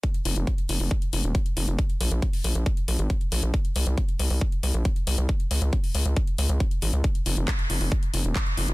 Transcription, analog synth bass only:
\new Staff \with { instrumentName = "Analog synth bass" } { \clef bass \time 4/4 \key des \lydian \tempo 4 = 137 r8 f,,16 f,,16 r8 f,,16 f,,16 r8 f,,16 ees,,16 r8 f,,16 f,,16 | r8 bes,,16 bes,,16 r8 bes,,16 bes,,16 r8 bes,,16 aes,,16 r8 bes,,16 bes,,16 | r8 c,16 c,16 r8 c,16 c,16 r8 c,16 bes,,16 r8 c,16 c,16 | r8 des,16 des,16 r8 des,16 des,16 r8 des,16 des,16 r8 aes,,16 des,16 |
r8 f,,16 f,,16 r8 f,,16 f,,16 r8 f,,16 ees,,16 r8 f,,16 f,,16 | }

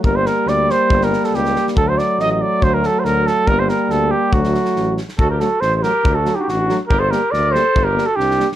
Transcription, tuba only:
\new Staff \with { instrumentName = "Tuba" } { \clef bass \time 2/4 \tempo 4 = 140 g,,4 d,4 | g,,4 cis,4 | d,4 a,,4 | d,4 d,4 |
g,,4 d,4 | d,4 a,,4 | d,4 a,,4 | d,4 a,,4 |
g,,4 d,4 | g,,4 c,4 | }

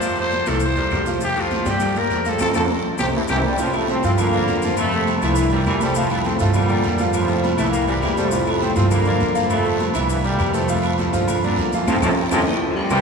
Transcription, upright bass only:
\new Staff \with { instrumentName = "Upright bass" } { \clef bass \time 4/4 \key f \major \tempo 4 = 203 f,4. c,4 e,8 f,4~ | f,4. g,4. f,4 | f,8 f,8 r4 c,8 r8 c,8 r8 | r4. g,4. f,4~ |
f,4. c,4. f,4~ | f,4. g,4. f,4~ | f,4. c,4. f,4~ | f,4. g,4. f,4~ |
f,4. c,4. f,4~ | f,4. g,4. f,4 | f,8 f,8 r8 f,8 r4. c,8 | }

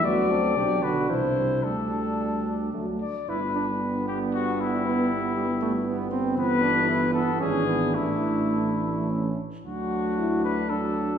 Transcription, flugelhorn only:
\new Staff \with { instrumentName = "Flugelhorn" } { \time 3/4 \key e \minor \tempo 4 = 114 fis'8 a'8 g'8 fis'8 e'4 | d'2~ d'8 r8 | e'8 d'8 b2 | b4 g8 a8 b8 c'8 |
\key d \major b8 d'8 e'8 b8 cis'8 b8 | a2~ a8 r8 | d'2 d'4 | }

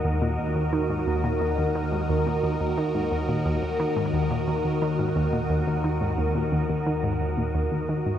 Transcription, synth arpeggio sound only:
\new Staff \with { instrumentName = "Synth arpeggio sound" } { \clef bass \time 4/4 \key dis \phrygian \tempo 4 = 88 dis,16 ais,16 dis,16 dis,16 dis16 gis,16 dis,16 ais,16 dis,16 dis,16 dis16 gis,16 dis,16 ais,16 dis,16 dis,16 | dis16 gis,16 dis,16 ais,16 dis,16 dis,16 dis16 gis,16 dis,16 ais,16 dis,16 dis,16 dis16 gis,16 dis,16 ais,16 | dis,16 dis,16 dis16 gis,16 dis,16 ais,16 dis,16 dis,16 dis16 gis,16 dis,16 ais,16 dis,16 dis,16 dis16 gis,16 | }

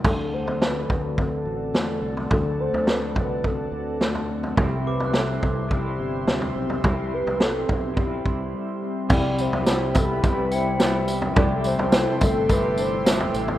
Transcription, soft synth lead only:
\new Staff \with { instrumentName = "Soft synth lead" } { \time 4/4 \key d \mixolydian \tempo 4 = 106 a'8 c''8 b'4 a'4 r4 | a'8 c''8 b'4 a'4 r4 | g'8 b'8 a'4 g'4 r4 | g'8 b'8 a'4 g'4. r8 |
d''8 c''4 a'8 b'8 c''4 r8 | d''8 c''4 a'8 b'8 c''4 r8 | }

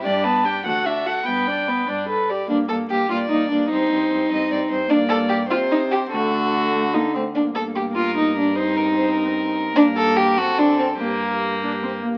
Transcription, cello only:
\new Staff \with { instrumentName = "Cello" } { \clef bass \time 6/8 \key g \major \tempo 4. = 98 g,4. d,4. | g,4. g,4. | \key g \minor g,8 g,8 g,8 g,8 g,8 g,8 | g,8 g,8 g,8 g,8 g,8 g,8 |
g,4. c4. | d2~ d8 r8 | g,2.~ | g,2. |
g,4. fis,4. | g,2~ g,8 r8 | }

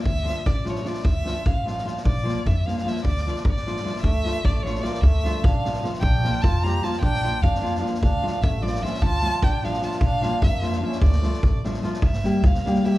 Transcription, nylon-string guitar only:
\new Staff \with { instrumentName = "Nylon-string guitar" } { \time 5/8 \key d \minor \tempo 4 = 151 r8 <f a d' f'>8 r8 <f a d' f'>8 <f a d' f'>8 | r8 <f a d' f'>8 r8 <f a d' f'>8 <f a d' f'>8 | r8 <f bes d' f'>8 r8 <f bes d' f'>8 <f bes d' f'>8 | r8 <f a d' f'>8 r8 <f a d' f'>8 <f a d' f'>8 |
r8 <f a d' f'>8 r8 <f a d' f'>8 <f a d' f'>8 | r8 <f a d' f'>8 r8 <f a d' f'>8 <f a d' f'>8 | r8 <f bes d' f'>8 r8 <f bes d' f'>8 <f bes d' f'>8 | r8 <f bes d' f'>8 r8 <f bes d' f'>8 <f bes d' f'>8 |
r8 <f a d' f'>8 r8 <f a d' f'>8 <f a d' f'>8 | r8 <f a d' f'>8 r8 <f a d' f'>8 <f a d' f'>8 | r8 <f bes d' f'>8 r8 <f bes d' f'>8 <f bes d' f'>8 | r8 <f a d' f'>8 r8 <f a d' f'>8 <f a d' f'>8 |
r8 <g bes d' g'>8 r8 <g bes d' g'>8 <g bes d' g'>8 | }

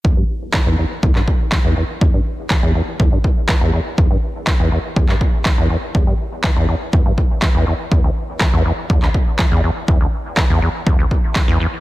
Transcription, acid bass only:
\new Staff \with { instrumentName = "Acid bass" } { \clef bass \time 4/4 \key e \minor \tempo 4 = 122 e,16 g,16 r8 e16 e,16 e,16 r16 e,16 g,16 r8 e16 e,16 e,16 r16 | e,16 g,16 r8 e16 e,16 e,16 r16 e,16 g,16 r8 e16 e,16 e,16 r16 | e,16 g,16 r8 e16 e,16 e,16 r16 e,16 g,16 r8 e16 e,16 e,16 r16 | e,16 g,16 r8 e16 e,16 e,16 r16 e,16 g,16 r8 e16 e,16 e,16 r16 |
e,16 d,16 r8 e16 e,16 e,16 r16 e,16 d,16 r8 e16 e,16 e,16 r16 | e,16 d,16 r8 e16 e,16 e,16 r16 e,16 d,16 r8 e16 e,16 e,16 r16 | }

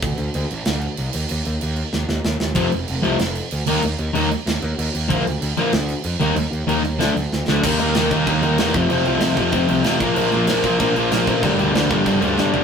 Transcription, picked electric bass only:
\new Staff \with { instrumentName = "Picked electric bass" } { \clef bass \time 4/4 \key ees \lydian \tempo 4 = 190 d,8 d,8 d,8 a,,8 d,4 c,8 ees,8 | ees,8 ees,8 ees,4 ees,8 ees,8 ees,8 ees,8 | f,,8 f,,8 f,,8 c,8 f,,4 d,8 ees,8 | ees,8 ees,8 ees,4 ees,8 ees,8 ees,8 ees,8 |
d,8 d,8 d,8 a,,8 d,4 f,8 ees,8 | ees,8 ees,8 ees,4 d,8 d,8 d,8 d,8 | ees,8 ees,8 ees,8 ees,8 ees,8 ees,8 e,8 f,,8 | f,,8 c,8 c,8 f,,8 f,,8 c,8 a,,8 bes,,8 |
bes,,8 bes,,8 bes,,8 bes,,8 bes,,8 bes,,8 bes,,8 a,,8 | g,,8 d,8 d,8 g,,8 g,,8 d,8 g,8 g,,8 | }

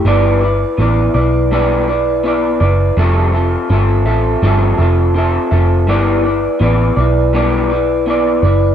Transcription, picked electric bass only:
\new Staff \with { instrumentName = "Picked electric bass" } { \clef bass \time 4/4 \key g \major \tempo 4 = 82 g,,4 a,,8 b,,2 fis,,8 | f,,4 g,,8 a,,8 g,,8 f,,4 f,,8 | g,,4 a,,8 b,,2 fis,,8 | }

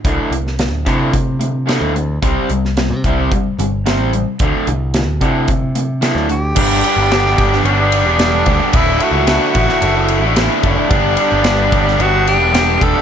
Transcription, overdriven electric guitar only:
\new Staff \with { instrumentName = "Overdriven electric guitar" } { \clef bass \time 4/4 \key c \lydian \tempo 4 = 110 <d, a, d>8 <d, a,>8 <d, a,>8 <d, a, d>8 <d, a,>8 <d, a,>8 <d, a, d>8 <d, a,>8 | <c g c'>8 <c g>8 <c g>8 <c g c'>8 <c g>8 <c g>8 <c g c'>8 <c g>8 | <d, a, d>8 <d, a,>8 <d, a,>8 <d, a, d>8 <d, a,>8 <d, a,>8 <d, a, d>8 <d, a,>8 | \key g \lydian <g, d g b d' g'>8 <g b d' g'>16 <g b d' g'>16 <g, d g b d' g'>8 <g b d' g'>16 <g b d' g'>16 <g b d' g'>16 <g b d' g'>8 <g b d' g'>16 <g, d g b d' g'>8 <g b d' g'>16 <g b d' g'>16 |
<d, a, d a e'>8 <a, d a e'>16 <d a e'>16 <d, a, d a e'>8 <a, d a e'>16 <d a e'>16 <a, d a e'>16 <d a e'>8 <d a e'>16 <d, a, d a e'>8 <a, d a e'>16 <d a e'>16 | <g, d g b d' g'>8 <g b d' g'>16 <g b d' g'>16 <g, d g b d' g'>8 <g b d' g'>16 <g b d' g'>16 <g b d' g'>16 <g b d' g'>8 <g b d' g'>16 <g, d g b d' g'>8 <g b d' g'>16 <g b d' g'>16 | }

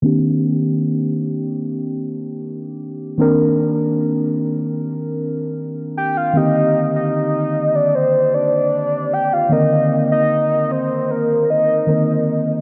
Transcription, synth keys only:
\new Staff \with { instrumentName = "Synth keys" } { \time 4/4 \key c \minor \tempo 4 = 76 <ees bes c' d' g'>1 | <ees bes c' d' bes'>1 | <d ees bes c' g'>1 | <d ees bes c' bes'>2. <d ees bes c' bes'>4 | }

